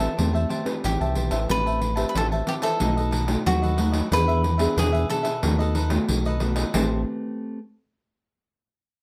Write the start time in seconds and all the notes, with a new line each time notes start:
Already playing: E3 A4
0.00 C4 G4 B4 C5 E5 A5, pandeiro
0.17 E2 A3 C4 G4 B4 C5 E5 A5, pandeiro
0.33 C5 E5 A5, pandeiro
0.49 G4 C5 E5 A5, pandeiro
0.65 C4 G4 B4, muted cavaquinho stroke, pandeiro
0.84 A1 E3 G4, pandeiro
1.01 C2 C5 E5 A5, pandeiro
1.15 B1 C4 G4 B4 C5 E5 A5, pandeiro
1.30 A1 C5 E5 A5, pandeiro
1.49 A1 A3 C4 G4 B4 C5 E5 A5, pandeiro
1.66 C5 E5 A5, pandeiro
1.81 muted cavaquinho stroke, pandeiro
1.96 C4 G4 B4 C5 E5 A5, pandeiro
2.09 B4
2.14 A1 E3 G4 A4 C5 E5 A5, pandeiro
2.32 C5 E5 A5, pandeiro
2.47 C4 G4 B4, pandeiro
2.62 A4 C5 E5 A5, pandeiro
2.80 B1 B2 A3 D#4 F#4 A4 B4 D#5, pandeiro
2.97 A4 B4 D#5, pandeiro
3.11 D#4 A4 B4 D#5, pandeiro
3.27 A3 D#4 F#4, muted cavaquinho stroke, pandeiro
3.46 D#2 F#3 F#4, pandeiro
3.62 A4 B4 D#5, pandeiro
3.77 A3 D#4 F#4 A4 B4 D#5, pandeiro
3.92 A4 B4 D#5, pandeiro
4.11 E2 E3 B3 D4 G#4 B4 E5, pandeiro
4.28 G#4 B4 E5, pandeiro
4.42 muted cavaquinho stroke, pandeiro
4.58 B3 D4 G#4 B4 E5, pandeiro
4.76 E2 B2 D4 G#4 B4 E5, pandeiro
4.92 G#4 B4 E5, pandeiro
5.10 B3 D4 G#4 A4, pandeiro
5.23 G#4 B4 E5, pandeiro
5.42 D#2 D#3 A3 B3 D#4 F#4 A4 B4 D#5, pandeiro
5.59 A4 B4 D#5, pandeiro
5.75 D#4 A4 B4 D#5, pandeiro
5.90 A3 B3 F#4, muted cavaquinho stroke, pandeiro
6.09 B1 D#3, pandeiro
6.25 A4 B4 D#5, pandeiro
6.40 A3 B3 D#4 F#4 A4 B4 D#5, pandeiro
6.56 A4 B4 D#5, pandeiro
6.74 A1 A3 C4 G4 B4 C5 E5 A5, pandeiro